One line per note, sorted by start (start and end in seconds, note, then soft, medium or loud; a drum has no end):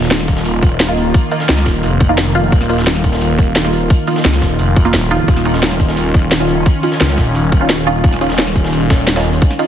0.00 1.13 D#1 medium
0.00 9.67 D#3 medium
0.00 5.24 A#3 medium
0.00 9.67 F4 medium
0.00 snare medium
0.00 closed hi-hat soft
0.11 snare loud
0.11 closed hi-hat medium
0.11 closed hi-hat loud
0.19 snare soft
0.28 kick medium
0.28 closed hi-hat medium
0.28 open hi-hat medium
0.28 shaker medium
0.37 snare medium
0.45 closed hi-hat medium
0.45 closed hi-hat loud
0.63 kick loud
0.63 closed hi-hat medium
0.63 shaker medium
0.80 snare loud
0.80 closed hi-hat medium
0.88 1.03 A#3 medium
0.88 1.03 D#4 medium
0.88 1.03 F4 medium
0.88 snare soft
0.97 closed hi-hat medium
0.97 open hi-hat medium
0.97 shaker medium
1.06 closed hi-hat soft
1.14 kick loud
1.14 closed hi-hat medium
1.32 1.40 A#3 medium
1.32 1.40 D#4 medium
1.32 1.40 F4 medium
1.32 closed hi-hat medium
1.32 shaker medium
1.40 snare medium
1.40 closed hi-hat soft
1.49 1.65 C#2 loud
1.49 snare loud
1.49 closed hi-hat medium
1.49 closed hi-hat loud
1.57 snare medium
1.66 1.82 D#1 loud
1.66 kick medium
1.66 snare soft
1.66 closed hi-hat medium
1.66 open hi-hat medium
1.66 shaker medium
1.83 2.51 F1 loud
1.83 closed hi-hat medium
1.83 closed hi-hat loud
2.00 kick loud
2.00 closed hi-hat medium
2.00 shaker medium
2.09 2.18 A#3 medium
2.09 2.18 D#4 medium
2.09 2.18 F4 loud
2.18 snare loud
2.18 closed hi-hat medium
2.26 closed hi-hat soft
2.35 2.44 A#3 loud
2.35 2.44 D#4 medium
2.35 2.44 F4 loud
2.35 closed hi-hat medium
2.35 open hi-hat medium
2.35 shaker medium
2.44 closed hi-hat soft
2.52 3.89 D#1 medium
2.52 kick loud
2.52 closed hi-hat medium
2.52 closed hi-hat loud
2.61 snare soft
2.61 closed hi-hat soft
2.69 2.78 A#3 medium
2.69 2.78 D#4 medium
2.69 2.78 F4 medium
2.69 closed hi-hat medium
2.69 shaker medium
2.78 snare medium
2.78 closed hi-hat soft
2.87 snare loud
2.87 closed hi-hat medium
2.95 snare soft
3.04 kick medium
3.04 closed hi-hat medium
3.04 open hi-hat medium
3.04 shaker medium
3.13 snare medium
3.21 closed hi-hat loud
3.21 closed hi-hat medium
3.38 kick loud
3.38 closed hi-hat medium
3.38 shaker medium
3.56 snare loud
3.56 closed hi-hat medium
3.64 3.78 A#3 medium
3.64 3.78 D#4 medium
3.64 3.78 F4 medium
3.64 snare soft
3.73 closed hi-hat medium
3.73 open hi-hat medium
3.73 shaker medium
3.82 closed hi-hat soft
3.90 kick loud
3.90 closed hi-hat medium
4.07 4.16 A#3 medium
4.07 4.16 D#4 medium
4.07 4.16 F4 medium
4.07 closed hi-hat medium
4.07 shaker medium
4.16 snare medium
4.16 closed hi-hat soft
4.25 4.41 C#2 loud
4.25 snare loud
4.25 closed hi-hat medium
4.33 snare soft
4.42 4.58 D#1 loud
4.42 kick medium
4.42 snare soft
4.42 closed hi-hat medium
4.42 open hi-hat medium
4.42 shaker medium
4.59 4.92 F1 medium
4.59 closed hi-hat medium
4.76 kick loud
4.76 closed hi-hat medium
4.76 shaker medium
4.85 4.94 A#3 medium
4.85 4.94 D#4 medium
4.85 4.94 F4 medium
4.85 closed hi-hat soft
4.94 5.27 D#1 loud
4.94 snare loud
4.94 closed hi-hat medium
5.02 closed hi-hat soft
5.11 5.20 A#3 loud
5.11 5.20 D#4 medium
5.11 5.20 F4 loud
5.11 closed hi-hat medium
5.11 open hi-hat medium
5.11 shaker medium
5.20 closed hi-hat soft
5.28 6.65 D#1 medium
5.28 9.67 C#4 medium
5.28 kick loud
5.28 closed hi-hat medium
5.37 snare soft
5.37 closed hi-hat soft
5.45 5.54 C#4 medium
5.45 5.54 D#4 medium
5.45 5.54 F4 medium
5.45 closed hi-hat medium
5.45 shaker medium
5.54 snare medium
5.54 closed hi-hat soft
5.63 snare loud
5.63 closed hi-hat medium
5.71 snare soft
5.80 kick medium
5.80 closed hi-hat medium
5.80 open hi-hat medium
5.80 shaker medium
5.88 snare soft
5.97 closed hi-hat medium
6.14 kick loud
6.14 closed hi-hat medium
6.14 shaker medium
6.32 snare loud
6.32 closed hi-hat medium
6.40 6.54 C#4 medium
6.40 6.54 D#4 medium
6.40 6.54 F4 medium
6.40 snare soft
6.49 closed hi-hat medium
6.49 open hi-hat medium
6.49 shaker medium
6.57 closed hi-hat soft
6.66 kick loud
6.66 closed hi-hat medium
6.83 6.92 C#4 medium
6.83 6.92 D#4 medium
6.83 6.92 F4 medium
6.83 closed hi-hat medium
6.83 shaker medium
6.92 snare medium
6.92 closed hi-hat soft
7.00 7.16 C#2 loud
7.00 snare loud
7.00 closed hi-hat medium
7.09 snare medium
7.09 snare soft
7.18 7.34 D#1 loud
7.18 kick medium
7.18 snare soft
7.18 closed hi-hat medium
7.18 open hi-hat medium
7.18 shaker medium
7.35 8.03 D#1 loud
7.35 closed hi-hat medium
7.35 closed hi-hat loud
7.52 kick loud
7.52 closed hi-hat medium
7.52 shaker medium
7.61 7.70 C#4 medium
7.61 7.70 D#4 medium
7.61 7.70 F4 medium
7.69 snare loud
7.69 closed hi-hat medium
7.78 closed hi-hat soft
7.87 7.96 C#4 loud
7.87 7.96 D#4 medium
7.87 7.96 F4 loud
7.87 closed hi-hat medium
7.87 open hi-hat medium
7.87 shaker medium
7.95 closed hi-hat soft
8.04 9.41 D#1 medium
8.04 kick loud
8.04 closed hi-hat medium
8.13 snare soft
8.13 closed hi-hat soft
8.21 8.30 C#4 medium
8.21 8.30 D#4 medium
8.21 8.30 F4 medium
8.21 closed hi-hat medium
8.21 shaker medium
8.30 snare medium
8.30 closed hi-hat soft
8.38 snare loud
8.38 closed hi-hat medium
8.38 closed hi-hat loud
8.47 snare soft
8.56 kick medium
8.56 closed hi-hat medium
8.56 open hi-hat medium
8.56 shaker medium
8.64 snare medium
8.73 closed hi-hat loud
8.73 closed hi-hat medium
8.90 kick loud
8.90 snare loud
8.90 closed hi-hat medium
8.90 shaker medium
9.07 snare loud
9.07 closed hi-hat loud
9.07 closed hi-hat medium
9.16 9.30 C#4 medium
9.16 9.30 D#4 medium
9.16 9.30 F4 medium
9.16 snare loud
9.16 snare soft
9.16 closed hi-hat medium
9.25 open hi-hat medium
9.25 shaker medium
9.33 closed hi-hat medium
9.33 closed hi-hat soft
9.42 kick loud
9.42 closed hi-hat loud
9.42 closed hi-hat medium
9.50 snare soft
9.59 9.67 C#4 medium
9.59 9.67 D#4 medium
9.59 9.67 F4 medium
9.59 closed hi-hat medium
9.59 shaker medium